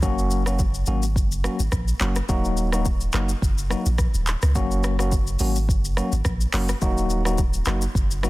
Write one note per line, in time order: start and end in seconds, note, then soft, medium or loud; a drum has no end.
0.02 0.84 F#1 loud
0.02 0.43 F#3 loud
0.02 0.43 A#3 medium
0.02 0.43 C#4 medium
0.02 0.43 F#4 loud
0.02 kick loud
0.02 shaker medium
0.18 shaker soft
0.31 shaker medium
0.46 0.60 F#3 medium
0.46 0.60 A#3 medium
0.46 0.60 C#4 medium
0.46 0.60 F#4 medium
0.46 cross-stick medium
0.46 shaker loud
0.59 kick loud
0.59 shaker medium
0.74 shaker medium
0.86 1.17 G#1 medium
0.86 1.04 F#3 medium
0.86 1.04 A#3 medium
0.86 1.04 C#4 medium
0.86 1.04 F#4 medium
0.86 shaker medium
1.03 shaker loud
1.16 1.48 F#1 loud
1.16 kick loud
1.16 shaker medium
1.32 shaker medium
1.44 1.60 F#3 medium
1.44 1.60 A#3 medium
1.44 1.61 C#4 medium
1.44 1.61 F#4 medium
1.44 cross-stick loud
1.44 shaker medium
1.60 1.69 G#1 medium
1.60 shaker medium
1.72 1.93 A#1 loud
1.72 kick medium
1.72 cross-stick medium
1.72 shaker medium
1.88 shaker medium
2.00 2.22 F#1 loud
2.00 2.17 F#3 medium
2.00 2.17 A#3 medium
2.00 2.17 C#4 medium
2.00 2.17 F#4 medium
2.00 clap medium
2.00 shaker medium
2.16 cross-stick medium
2.16 shaker medium
2.29 3.10 D#1 loud
2.29 2.69 F#3 loud
2.29 2.69 A#3 medium
2.29 2.69 D#4 medium
2.29 2.69 F#4 loud
2.29 kick loud
2.29 shaker medium
2.45 shaker soft
2.57 shaker medium
2.72 2.86 F#3 medium
2.72 2.87 A#3 medium
2.72 2.87 D#4 medium
2.72 2.87 F#4 medium
2.72 cross-stick medium
2.72 shaker medium
2.85 kick loud
2.85 shaker loud
3.01 shaker medium
3.13 3.35 F#1 medium
3.13 3.30 F#3 medium
3.13 3.30 A#3 medium
3.13 3.30 D#4 medium
3.13 3.30 F#4 medium
3.13 cross-stick medium
3.13 clap medium
3.13 shaker medium
3.29 shaker medium
3.42 3.75 F#1 loud
3.42 kick loud
3.42 shaker medium
3.58 shaker medium
3.70 3.87 F#3 medium
3.70 3.87 A#3 medium
3.70 3.87 D#4 medium
3.70 3.87 F#4 medium
3.70 cross-stick medium
3.70 shaker medium
3.86 4.07 A#1 medium
3.86 shaker medium
3.98 kick medium
3.98 cross-stick medium
3.98 shaker medium
4.14 4.35 D#1 medium
4.14 shaker medium
4.27 clap medium
4.27 shaker medium
4.42 4.57 C#2 medium
4.42 cross-stick medium
4.42 shaker medium
4.55 5.36 F#1 loud
4.55 4.95 F#3 medium
4.55 4.96 A#3 medium
4.55 4.96 C#4 medium
4.55 4.96 F#4 loud
4.55 kick loud
4.55 shaker medium
4.71 shaker soft
4.84 cross-stick loud
4.84 shaker medium
4.99 5.13 F#3 medium
4.99 5.13 A#3 medium
4.99 5.13 C#4 medium
4.99 5.13 F#4 medium
4.99 cross-stick medium
4.99 shaker loud
5.12 kick loud
5.12 shaker medium
5.27 shaker medium
5.39 5.70 G#1 medium
5.39 5.57 F#3 medium
5.39 5.57 A#3 medium
5.39 5.57 C#4 medium
5.39 5.57 F#4 medium
5.39 open hi-hat medium
5.39 shaker medium
5.56 shaker loud
5.69 6.01 F#1 loud
5.69 kick loud
5.69 shaker medium
5.85 shaker medium
5.97 6.13 F#3 medium
5.97 6.13 A#3 medium
5.97 6.13 C#4 medium
5.97 6.14 F#4 medium
5.97 cross-stick medium
5.97 shaker medium
6.12 6.22 G#1 medium
6.12 shaker medium
6.25 6.46 A#1 loud
6.25 kick medium
6.25 cross-stick medium
6.25 shaker medium
6.41 shaker medium
6.53 6.74 F#1 medium
6.53 6.70 F#3 medium
6.53 6.70 A#3 medium
6.53 6.70 C#4 medium
6.53 6.70 F#4 medium
6.53 clap medium
6.53 open hi-hat medium
6.53 shaker medium
6.69 cross-stick medium
6.69 shaker medium
6.82 7.63 D#1 loud
6.82 7.22 F#3 medium
6.82 7.22 A#3 medium
6.82 7.22 D#4 medium
6.82 7.22 F#4 loud
6.82 kick loud
6.82 shaker medium
6.98 shaker medium
7.10 shaker medium
7.25 7.39 F#3 medium
7.25 7.39 A#3 medium
7.25 7.40 D#4 medium
7.25 7.40 F#4 medium
7.25 cross-stick medium
7.25 shaker medium
7.38 kick loud
7.38 shaker medium
7.53 shaker medium
7.65 7.88 F#1 medium
7.65 7.83 F#3 medium
7.65 7.83 A#3 medium
7.65 7.83 D#4 medium
7.65 7.83 F#4 medium
7.65 cross-stick medium
7.65 clap medium
7.65 shaker medium
7.82 shaker medium
7.95 8.27 F#1 loud
7.95 kick loud
7.95 shaker medium
8.11 shaker medium
8.23 8.30 F#3 medium
8.23 8.30 A#3 medium
8.23 8.30 D#4 medium
8.23 8.30 F#4 medium
8.23 cross-stick loud
8.23 shaker medium